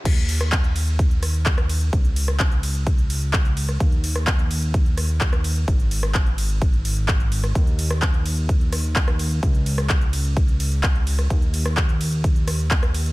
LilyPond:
<<
  \new Staff \with { instrumentName = "Analog synth bass" } { \clef bass \time 4/4 \key des \mixolydian \tempo 4 = 128 ees,1 | des,1 | ees,1 | aes,,1 |
ees,1 | des,1 | ees,1 | }
  \new DrumStaff \with { instrumentName = "Drums" } \drummode { \time 4/4 <cymc hh bd>16 hh16 <hho cymr>16 <hh ss>16 <hc hh bd>16 hh16 <hho cymr>16 hh16 <hh bd>16 hh16 <hho cymr ss>16 hh16 <hc hh bd>16 <hh ss>16 <hho cymr>16 hh16 | <hh bd>16 hh16 <hho cymr>16 ss16 <hc hh bd>16 hh16 <hho cymr>16 hh16 <hh bd>16 hh16 <hho cymr>16 hh16 <hc hh bd>16 hh16 <hho cymr>16 <hh ss>16 | <hh bd>16 hh16 <hho cymr>16 <hh ss>16 <hc hh bd>16 hh16 <hho cymr>16 hh16 <hh bd>16 hh16 <hho cymr ss>16 hh16 <hc hh bd>16 <hh ss>16 <hho cymr>16 hh16 | <hh bd>16 hh16 <hho cymr>16 <hh ss>16 <hc hh bd>16 hh16 <hho cymr>16 hh16 <hh bd>16 hh16 <hho cymr>16 hh16 <hc hh bd>16 hh16 <hho cymr>16 <hh ss>16 |
<hh bd>16 hh16 <hho cymr>16 <hh ss>16 <hc hh bd>16 hh16 <hho cymr>16 hh16 <hh bd>16 hh16 <hho cymr ss>16 hh16 <hc hh bd>16 <hh ss>16 <hho cymr>16 hh16 | <hh bd>16 hh16 <hho cymr>16 <hh ss>16 <hc hh bd>16 hh16 <hho cymr>16 hh16 <hh bd>16 hh16 <hho cymr>16 hh16 <hc hh bd>16 hh16 <hho cymr>16 <hh ss>16 | <hh bd>16 hh16 <hho cymr>16 <hh ss>16 <hc hh bd>16 hh16 <hho cymr>16 hh16 <hh bd>16 hh16 <hho cymr ss>16 hh16 <hc hh bd>16 <hh ss>16 <hho cymr>16 hh16 | }
>>